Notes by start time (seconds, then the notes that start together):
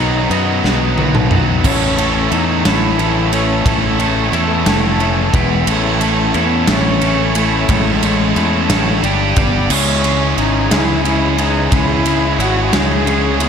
Already playing: B1 B2 D#3 D#4 B4
0.00 F#3 B3 F#4
0.30 F#2 B2 D#3 F#3 B3 D#4 F#4 B4, ride
0.64 B1 B2 D#3 F#3 B3 D#4 F#4 B4, snare
0.98 B2 D#3 F#3 B3 D#4 F#4 B4, high tom
1.15 mid tom
1.30 B2 D#3 F#3 B3 D#4 F#4 B4, mid tom
1.63 A1 A2 E3 A3 C#4 E4 A4 C#5 A5, kick, ride, crash
1.98 A2 E3 A3 C#4 E4 A4, ride
2.30 E2 A2 E3 A3 C#4 D#4 E4 A4, ride
2.65 A1 A2 E3 A3 C#4 E4 A4, snare, ride
2.98 A2 E3 A3 C#4 E4 A4, ride
3.32 A2 E3 A3 C#4 E4 A4, ride
3.65 A1 A2 E3 A3 C#4 E4 A4, kick, ride
3.99 A2 E3 A3 C#4 E4 A4, ride
4.32 E2 A2 E3 A3 C#4 E4 A4, ride
4.66 F1 A2 E3 A3 C#4 E4 A4, snare, ride
5.00 A2 E3 A3 C#4 E4 A4, ride
5.33 E1 E3 G#3 B3 E4 B4 E5 B5, kick, ride
5.67 A1 A2 E3 A3 C#4 E4 A4 C#5 A5, ride
6.01 A2 E3 A3 C#4 E4 A4, ride
6.34 E2 A2 E3 A3 B3 C#4 E4 A4, ride
6.67 A1 A2 E3 A3 C#4 E4 A4, snare, ride
7.01 A2 E3 A3 C#4 E4 A4, ride
7.35 A2 E3 A3 C#4 E4 A4, ride
7.69 A1 A2 E3 G#3 A3 C#4 E4 A4, kick, ride
8.03 A2 E3 A3 C#4 E4 A4, ride
8.36 E2 A2 E3 A3 C#4 E4 A4, ride
8.69 A1 A2 E3 A3 C#4 E4 A4, snare, ride
9.03 G1 G3 D4 G4 D5 G5, ride
9.36 G1 G3 B3 D4 G4 D5, kick, ride
9.69 C#2 C#3 E3 G#3 C#4 E4 G#4 C#5 G#5, crash
10.04 C#3 E3 G#3 C#4 E4 G#4, ride
10.37 G#1 C#3 E3 G#3 C#4 D#4 E4 G#4, ride
10.70 C#2 C#3 E3 G#3 C#4 E4 G#4, snare, ride
11.04 C#3 E3 G#3 C#4 E4 G#4, ride
11.38 C#3 E3 G#3 C#4 D#4 E4 G#4, ride
11.72 C#2 C#3 E3 G#3 C#4 E4 G#4 F#5, kick, ride
12.05 C#3 E3 G#3 C#4 E4 G#4, ride
12.39 G#1 C#3 E3 G#3 C#4 E4 F#4 G#4, ride
12.72 C#2 C#3 E3 G#3 C#4 E4 G#4, snare, ride
13.05 C#3 E3 G#3 C#4 E4 G#4, ride
13.40 C#3 E3 G#3 B3 C#4 E4 G#4, ride